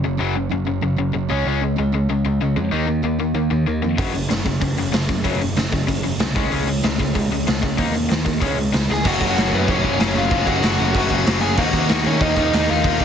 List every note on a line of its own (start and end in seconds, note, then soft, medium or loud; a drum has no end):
0.04 0.19 F#1 medium
0.04 0.18 F#2 medium
0.04 0.18 C#3 medium
0.19 0.49 F#1 medium
0.19 0.34 F#2 medium
0.19 0.35 C#3 medium
0.19 0.35 F#3 medium
0.36 0.50 F#2 medium
0.36 0.50 C#3 medium
0.52 0.80 F#1 loud
0.52 0.66 F#2 medium
0.52 0.66 C#3 medium
0.67 0.81 F#2 medium
0.67 0.81 C#3 medium
0.83 0.97 F#1 medium
0.83 0.97 F#2 medium
0.83 0.97 C#3 medium
0.98 1.13 F#1 medium
0.98 1.12 F#2 medium
0.98 1.13 C#3 medium
1.13 1.29 F#1 medium
1.13 1.28 F#2 medium
1.13 1.28 C#3 medium
1.30 1.45 C#2 medium
1.30 1.45 C#3 medium
1.30 1.45 G#3 loud
1.30 1.46 C#4 loud
1.46 1.75 C#2 medium
1.46 1.61 C#3 medium
1.46 1.61 G#3 medium
1.46 1.62 C#4 medium
1.63 1.77 C#3 medium
1.63 1.77 G#3 medium
1.78 2.07 C#2 medium
1.78 1.92 C#3 medium
1.78 1.92 G#3 medium
1.94 2.08 C#3 medium
1.94 2.08 G#3 medium
2.09 2.24 C#2 medium
2.09 2.24 C#3 medium
2.09 2.24 G#3 medium
2.25 2.39 C#2 medium
2.25 2.39 C#3 medium
2.25 2.40 G#3 medium
2.41 2.55 C#2 medium
2.41 2.55 C#3 medium
2.41 2.55 G#3 medium
2.56 2.71 F2 medium
2.56 2.71 C#3 medium
2.56 2.71 G#3 medium
2.72 3.01 D#2 medium
2.72 2.86 D#3 medium
2.72 2.86 A#3 medium
2.72 2.87 D#4 medium
2.87 3.02 D#3 medium
2.87 3.02 A#3 medium
3.03 3.32 D#2 loud
3.03 3.18 D#3 medium
3.03 3.19 A#3 medium
3.20 3.34 D#3 medium
3.20 3.34 A#3 medium
3.34 3.49 D#2 medium
3.34 3.49 D#3 medium
3.34 3.49 A#3 medium
3.50 3.66 D#2 medium
3.50 3.65 D#3 medium
3.50 3.65 A#3 medium
3.67 3.82 D#2 medium
3.67 3.81 D#3 medium
3.67 3.81 A#3 medium
3.82 3.98 F2 medium
3.82 3.97 D#3 medium
3.82 3.97 A#3 medium
3.98 4.28 F#1 medium
3.98 4.13 F#2 medium
3.98 4.13 C#3 medium
3.98 4.13 F#3 medium
3.98 kick loud
3.98 open hi-hat medium
4.14 4.28 F#2 medium
4.14 4.28 C#3 medium
4.14 open hi-hat medium
4.29 4.59 F#1 medium
4.29 4.44 F#2 medium
4.29 4.44 C#3 medium
4.29 snare loud
4.29 open hi-hat medium
4.45 4.60 F#2 medium
4.45 4.60 C#3 medium
4.45 kick medium
4.45 open hi-hat medium
4.61 4.76 F#1 medium
4.61 4.76 F#2 medium
4.61 4.76 C#3 medium
4.61 kick medium
4.61 open hi-hat medium
4.78 4.93 F#1 medium
4.78 4.91 F#2 medium
4.78 4.91 C#3 medium
4.78 open hi-hat medium
4.92 5.08 F#1 medium
4.92 5.07 F#2 medium
4.92 5.07 C#3 medium
4.92 snare loud
4.92 open hi-hat medium
5.09 5.24 F#1 medium
5.09 5.23 F#2 medium
5.09 5.23 C#3 medium
5.09 kick medium
5.09 open hi-hat soft
5.24 5.54 F#1 medium
5.24 5.40 F#2 medium
5.24 5.40 C#3 medium
5.24 5.40 F#3 medium
5.24 kick medium
5.24 open hi-hat medium
5.41 5.55 F#2 medium
5.41 5.56 C#3 medium
5.41 open hi-hat medium
5.56 5.86 F#1 medium
5.56 5.71 F#2 medium
5.56 5.71 C#3 medium
5.56 snare medium
5.56 open hi-hat medium
5.72 5.86 F#2 medium
5.72 5.86 C#3 medium
5.72 kick medium
5.72 open hi-hat medium
5.87 6.03 F#1 medium
5.87 6.02 F#2 medium
5.87 6.02 C#3 medium
5.87 kick medium
5.87 open hi-hat medium
6.04 6.19 F#1 medium
6.04 6.18 F#2 medium
6.04 6.18 C#3 medium
6.04 open hi-hat medium
6.19 6.35 C2 medium
6.19 6.34 F#2 medium
6.19 6.34 C#3 medium
6.19 snare loud
6.19 open hi-hat medium
6.35 6.51 C#2 medium
6.35 6.51 C#3 medium
6.35 6.51 G#3 medium
6.35 6.51 C#4 medium
6.35 kick medium
6.35 open hi-hat medium
6.51 6.81 C#2 medium
6.51 6.67 C#3 medium
6.51 6.67 G#3 medium
6.51 6.67 C#4 medium
6.51 open hi-hat medium
6.67 6.82 C#3 medium
6.67 6.83 G#3 medium
6.67 open hi-hat medium
6.83 7.13 C#2 medium
6.83 6.98 C#3 medium
6.83 6.98 G#3 medium
6.83 snare loud
6.83 open hi-hat medium
6.99 7.14 C#3 medium
6.99 7.14 G#3 medium
6.99 kick medium
6.99 open hi-hat medium
7.15 7.30 C#2 medium
7.15 7.30 C#3 medium
7.15 7.30 G#3 medium
7.15 kick medium
7.15 open hi-hat medium
7.31 7.45 C#2 medium
7.31 7.46 C#3 medium
7.31 7.46 G#3 medium
7.31 open hi-hat soft
7.47 7.62 C#2 medium
7.47 7.61 C#3 medium
7.47 7.61 G#3 medium
7.47 snare loud
7.47 open hi-hat medium
7.62 7.77 C#2 medium
7.62 7.77 C#3 medium
7.62 7.77 G#3 medium
7.62 kick medium
7.62 open hi-hat soft
7.78 8.08 D#2 medium
7.78 7.92 D#3 medium
7.78 7.93 A#3 medium
7.78 7.94 D#4 medium
7.78 kick medium
7.78 open hi-hat medium
7.94 8.08 D#3 medium
7.94 8.08 A#3 medium
7.94 open hi-hat medium
8.09 8.39 D#2 loud
8.09 8.24 D#3 medium
8.09 8.24 A#3 medium
8.09 snare loud
8.09 open hi-hat medium
8.25 8.40 D#3 medium
8.25 8.40 A#3 medium
8.25 kick medium
8.25 open hi-hat medium
8.41 8.56 C#2 medium
8.41 8.56 C#3 medium
8.41 8.56 G#3 medium
8.41 8.56 C#4 medium
8.41 kick medium
8.41 open hi-hat medium
8.57 8.72 C#2 medium
8.57 8.71 C#3 medium
8.57 8.72 G#3 medium
8.57 open hi-hat medium
8.73 8.88 C#2 medium
8.73 8.87 C#3 medium
8.73 8.87 G#3 medium
8.73 snare loud
8.73 open hi-hat medium
8.90 9.04 C#2 medium
8.90 9.04 C#3 medium
8.90 9.04 G#3 medium
8.90 9.05 G#4 medium
8.90 snare medium
8.94 9.08 G#5 medium
9.05 9.20 F#1 loud
9.05 9.21 F#2 medium
9.05 9.21 C#3 loud
9.05 9.21 F#3 loud
9.05 10.30 A#3 medium
9.05 10.30 C#4 loud
9.05 10.32 F#4 medium
9.05 9.50 F#4 medium
9.05 9.51 F#5 loud
9.05 kick loud
9.05 crash loud
9.05 crash medium
9.21 9.36 F#1 loud
9.21 9.37 F#2 medium
9.21 9.37 C#3 loud
9.21 9.38 F#3 loud
9.21 kick medium
9.21 crash medium
9.36 9.52 F#1 loud
9.36 9.53 F#2 loud
9.36 9.52 C#3 loud
9.36 9.52 F#3 loud
9.36 snare loud
9.36 crash medium
9.52 9.67 F#2 medium
9.52 9.66 F#2 medium
9.52 9.67 C#3 medium
9.52 9.68 F#3 medium
9.52 9.68 B3 medium
9.52 9.70 B4 medium
9.52 crash medium
9.68 9.84 F#1 medium
9.68 9.83 F#2 loud
9.68 9.83 C#3 loud
9.68 9.84 F#3 loud
9.68 10.13 C#4 medium
9.68 10.18 C#5 loud
9.68 kick loud
9.68 crash medium
9.84 9.99 F#1 medium
9.84 9.98 F#2 medium
9.84 9.98 C#3 loud
9.84 10.00 F#3 loud
9.84 kick medium
9.84 crash medium
9.99 10.15 F#1 medium
9.99 10.15 F#2 loud
9.99 10.15 C#3 loud
9.99 10.14 F#3 loud
9.99 snare loud
9.99 crash medium
10.15 10.30 F#1 medium
10.15 10.30 F#2 medium
10.15 10.30 C#3 medium
10.15 10.31 F#3 medium
10.15 10.46 F4 medium
10.15 10.48 F5 loud
10.15 crash medium
10.31 10.46 F#1 medium
10.31 10.47 F#2 medium
10.31 10.45 C#3 loud
10.31 10.46 F#3 loud
10.31 11.57 A#3 medium
10.31 11.57 C#4 loud
10.31 11.59 F#4 loud
10.31 kick loud
10.31 crash medium
10.46 10.62 F#1 loud
10.46 10.62 F#2 medium
10.46 10.63 C#3 medium
10.46 10.64 F#3 loud
10.46 11.38 F#4 medium
10.46 11.38 F#5 loud
10.46 kick medium
10.46 crash medium
10.63 10.78 F#1 loud
10.63 10.79 F#2 loud
10.63 10.78 C#3 loud
10.63 10.79 F#3 loud
10.63 snare loud
10.63 crash medium
10.79 10.94 F#1 medium
10.79 10.95 F#2 medium
10.79 10.95 C#3 medium
10.79 10.96 F#3 medium
10.79 crash medium
10.95 11.10 F#1 medium
10.95 11.11 F#2 medium
10.95 11.10 C#3 loud
10.95 11.10 F#3 loud
10.95 kick loud
10.95 crash loud
11.10 11.26 F#1 loud
11.10 11.25 F#2 medium
11.10 11.26 C#3 loud
11.10 11.27 F#3 loud
11.10 kick medium
11.10 crash medium
11.26 11.41 F#1 medium
11.26 11.42 F#2 medium
11.26 11.41 C#3 loud
11.26 11.42 F#3 loud
11.26 snare loud
11.26 crash loud
11.41 11.57 F#1 loud
11.41 11.57 F#2 medium
11.41 11.57 C#3 medium
11.41 11.58 F#3 loud
11.41 11.56 G#4 medium
11.41 11.56 G#5 loud
11.41 crash medium
11.57 11.72 D#2 loud
11.57 11.74 D#3 medium
11.57 11.74 A#3 loud
11.57 11.73 D#4 loud
11.57 12.01 F#4 medium
11.57 12.84 F#4 loud
11.57 12.02 F#5 loud
11.57 kick loud
11.57 crash medium
11.73 11.88 D#2 loud
11.73 11.88 D#3 medium
11.73 11.89 A#3 loud
11.73 11.89 D#4 loud
11.73 kick medium
11.73 crash medium
11.89 12.05 D#2 loud
11.89 12.05 D#3 loud
11.89 12.04 A#3 loud
11.89 12.04 D#4 loud
11.89 snare loud
11.89 crash medium
12.04 12.18 D#3 medium
12.04 12.20 D#3 medium
12.04 12.19 A#3 medium
12.04 12.20 C#4 medium
12.04 12.19 D#4 medium
12.04 12.20 C#5 medium
12.04 crash medium
12.20 12.36 D#2 medium
12.20 12.36 D#3 loud
12.20 12.35 A#3 loud
12.20 12.35 D#4 loud
12.20 12.66 D#4 medium
12.20 12.65 D#5 loud
12.20 kick loud
12.20 crash medium
12.36 12.52 D#2 loud
12.36 12.51 D#3 medium
12.36 12.51 A#3 medium
12.36 12.52 D#4 loud
12.36 kick medium
12.36 crash medium
12.52 12.68 D#2 loud
12.52 12.67 D#3 medium
12.52 12.67 A#3 loud
12.52 12.66 D#4 loud
12.52 snare loud
12.52 crash loud
12.67 12.84 D#2 medium
12.67 12.82 D#3 medium
12.67 12.83 A#3 medium
12.67 12.83 D#4 loud
12.67 12.98 F4 medium
12.67 13.01 F5 medium
12.67 crash medium
12.83 13.00 D#2 medium
12.83 13.00 D#3 loud
12.83 12.99 A#3 medium
12.83 12.99 D#4 medium
12.83 13.05 F#4 medium
12.83 kick loud
12.83 crash medium
13.00 13.05 D#2 loud
13.00 13.05 D#3 medium
13.00 13.05 A#3 loud
13.00 13.05 D#4 loud
13.00 kick medium
13.00 crash medium